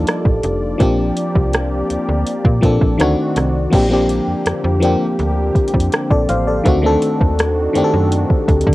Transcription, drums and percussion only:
0.07 cross-stick loud
0.07 closed hi-hat medium
0.25 kick medium
0.43 closed hi-hat medium
0.80 kick loud
0.80 closed hi-hat medium
1.17 closed hi-hat medium
1.35 kick medium
1.53 cross-stick loud
1.53 closed hi-hat medium
1.90 closed hi-hat medium
2.26 closed hi-hat medium
2.45 kick medium
2.63 kick medium
2.63 closed hi-hat medium
2.81 kick medium
3.00 cross-stick loud
3.00 closed hi-hat medium
3.36 cross-stick medium
3.36 closed hi-hat medium
3.73 kick loud
3.73 closed hi-hat medium
3.73 crash loud
4.09 closed hi-hat medium
4.46 cross-stick loud
4.46 closed hi-hat medium
4.83 closed hi-hat medium
5.19 closed hi-hat medium
5.55 kick medium
5.55 closed hi-hat soft
5.68 closed hi-hat medium
5.74 kick medium
5.80 closed hi-hat medium
5.92 cross-stick loud
5.92 closed hi-hat medium
6.11 kick medium
6.29 closed hi-hat medium
6.65 kick loud
6.65 closed hi-hat medium
7.02 closed hi-hat medium
7.21 kick medium
7.39 cross-stick loud
7.39 closed hi-hat medium
7.75 closed hi-hat medium
8.12 closed hi-hat medium
8.30 kick loud
8.48 kick medium
8.48 closed hi-hat soft
8.61 closed hi-hat medium
8.67 kick medium

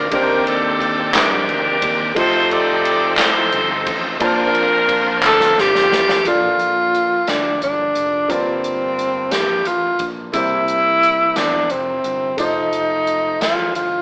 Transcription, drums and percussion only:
0.11 kick loud
0.11 ride medium
0.47 ride soft
0.81 kick medium
0.81 ride soft
1.14 snare loud
1.14 clap loud
1.14 ride medium
1.49 ride soft
1.82 kick loud
1.82 ride medium
2.16 kick loud
2.16 ride medium
2.51 ride soft
2.85 ride medium
3.17 snare loud
3.17 clap loud
3.17 ride medium
3.52 ride soft
3.86 kick loud
3.86 ride medium
4.20 kick loud
4.20 ride medium
4.55 ride soft
4.89 kick loud
4.89 ride medium
5.22 snare medium
5.22 clap loud
5.40 snare medium
5.58 snare medium
5.75 snare medium
5.92 snare loud
6.09 snare loud
6.25 kick medium
6.25 closed hi-hat medium
6.59 closed hi-hat soft
6.94 closed hi-hat soft
7.27 snare medium
7.27 closed hi-hat medium
7.62 closed hi-hat soft
7.95 closed hi-hat soft
8.30 kick medium
8.30 closed hi-hat medium
8.64 closed hi-hat soft
8.99 closed hi-hat soft
9.31 snare medium
9.31 closed hi-hat medium
9.65 closed hi-hat soft
9.99 kick medium
9.99 closed hi-hat soft
10.33 kick medium
10.33 closed hi-hat medium
10.68 closed hi-hat soft
11.03 closed hi-hat soft
11.36 snare medium
11.36 closed hi-hat medium
11.70 closed hi-hat soft
12.04 closed hi-hat soft
12.38 kick medium
12.38 closed hi-hat medium
12.73 closed hi-hat soft
13.07 closed hi-hat soft
13.41 snare loud
13.41 closed hi-hat medium
13.75 closed hi-hat soft

